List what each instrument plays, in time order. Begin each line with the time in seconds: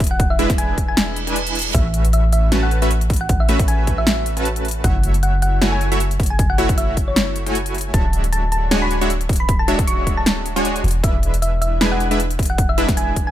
Already playing: 808-style bass E1
0.00 kick, closed hi-hat
0.04 closed hi-hat
0.07 closed hi-hat
0.11 synth pluck F#5
0.20 kick, closed hi-hat
0.30 synth pluck E5
0.39 supersaw synth G#3 D4 E4 B4 E5, closed hi-hat
0.50 kick, snare, closed hi-hat
0.58 synth pluck G#5, closed hi-hat
0.78 kick, closed hi-hat
0.88 synth pluck G#5
0.97 snare, closed hi-hat, reverse cymbal
1.16 closed hi-hat
1.27 supersaw synth G#3 D4 E4 B4 G#5, closed hi-hat
1.36 closed hi-hat
1.47 closed hi-hat
1.55 closed hi-hat
1.59 closed hi-hat
1.62 closed hi-hat
1.74 808-style bass A1, supersaw synth A3 C#4 F#4 B4 E5, synth pluck E5, kick, closed hi-hat
1.94 closed hi-hat
2.05 closed hi-hat
2.13 synth pluck E5, closed hi-hat
2.33 synth pluck E5, closed hi-hat
2.52 supersaw synth A3 C#4 F#4 B4 A5, snare, closed hi-hat
2.63 synth pluck F#5
2.71 closed hi-hat
2.82 supersaw synth A3 C#4 F#4 B4 E5, closed hi-hat
2.91 closed hi-hat
3.01 closed hi-hat
3.10 kick, closed hi-hat
3.14 closed hi-hat
3.16 closed hi-hat
3.21 synth pluck F#5
3.29 kick, closed hi-hat
3.40 synth pluck E5
3.49 supersaw synth A3 C#4 F#4 B4 E5, closed hi-hat
3.59 kick, closed hi-hat
3.68 synth pluck G#5, closed hi-hat
3.87 kick, closed hi-hat
3.98 synth pluck E5
4.07 snare, closed hi-hat
4.26 closed hi-hat
4.37 supersaw synth A3 C#4 F#4 B4 A5, closed hi-hat
4.45 closed hi-hat
4.56 closed hi-hat
4.65 closed hi-hat
4.68 closed hi-hat
4.71 closed hi-hat
4.84 808-style bass F#1, supersaw synth A3 E4 F#4 C#5 E5, synth pluck F#5, kick, closed hi-hat
5.03 closed hi-hat
5.14 closed hi-hat
5.23 synth pluck F#5, closed hi-hat
5.42 synth pluck F#5, closed hi-hat
5.61 supersaw synth A3 E4 F#4 C#5 G#5, snare, closed hi-hat
5.72 synth pluck G#5
5.81 closed hi-hat
5.92 supersaw synth A3 E4 F#4 C#5 E5, closed hi-hat
6.00 closed hi-hat
6.11 closed hi-hat
6.20 kick, closed hi-hat
6.23 closed hi-hat
6.26 closed hi-hat
6.30 synth pluck G#5
6.39 kick, closed hi-hat
6.50 synth pluck F#5
6.58 supersaw synth A3 E4 F#4 C#5 E5, closed hi-hat
6.69 kick, closed hi-hat
6.78 synth pluck E5, closed hi-hat
6.97 kick, closed hi-hat
7.08 synth pluck C#5
7.16 snare, closed hi-hat
7.36 closed hi-hat
7.46 supersaw synth A3 E4 F#4 C#5 G#5, closed hi-hat
7.55 closed hi-hat
7.66 closed hi-hat
7.75 closed hi-hat
7.78 closed hi-hat
7.81 closed hi-hat
7.94 808-style bass D1, supersaw synth G#3 D4 F#4 C#5 E5, synth pluck A5, kick, closed hi-hat
8.13 closed hi-hat
8.24 closed hi-hat
8.32 synth pluck A5, closed hi-hat
8.52 synth pluck A5, closed hi-hat
8.71 supersaw synth G#3 D4 F#4 C#5 G#5, snare, closed hi-hat
8.82 synth pluck B5
8.91 closed hi-hat
9.01 supersaw synth G#3 D4 F#4 C#5 E5, closed hi-hat
9.10 closed hi-hat
9.21 closed hi-hat
9.29 kick, closed hi-hat
9.33 closed hi-hat
9.36 closed hi-hat
9.40 synth pluck B5
9.49 kick, closed hi-hat
9.59 synth pluck A5
9.68 supersaw synth G#3 D4 F#4 C#5 E5, closed hi-hat
9.79 kick, closed hi-hat
9.87 synth pluck C#6, closed hi-hat
10.07 kick, closed hi-hat
10.17 synth pluck A5
10.26 snare, closed hi-hat
10.46 closed hi-hat
10.56 supersaw synth G#3 D4 F#4 C#5 G#5, closed hi-hat
10.65 closed hi-hat
10.76 closed hi-hat
10.84 808-style bass E1, closed hi-hat
10.88 closed hi-hat
10.91 closed hi-hat
11.03 supersaw synth G#3 D4 E4 B4 E5, synth pluck E5, kick, closed hi-hat
11.23 closed hi-hat
11.34 closed hi-hat
11.42 synth pluck E5, closed hi-hat
11.62 synth pluck E5, closed hi-hat
11.81 supersaw synth G#3 D4 E4 B4 G#5, snare, closed hi-hat
11.92 synth pluck F#5
12.00 closed hi-hat
12.11 supersaw synth G#3 D4 E4 B4 E5, closed hi-hat
12.20 closed hi-hat
12.31 closed hi-hat
12.39 kick, closed hi-hat
12.43 closed hi-hat
12.46 closed hi-hat
12.50 synth pluck F#5
12.58 kick, closed hi-hat
12.69 synth pluck E5
12.78 supersaw synth G#3 D4 E4 B4 E5, closed hi-hat
12.89 kick, snare, closed hi-hat
12.97 synth pluck G#5, closed hi-hat
13.16 kick, closed hi-hat
13.27 synth pluck G#5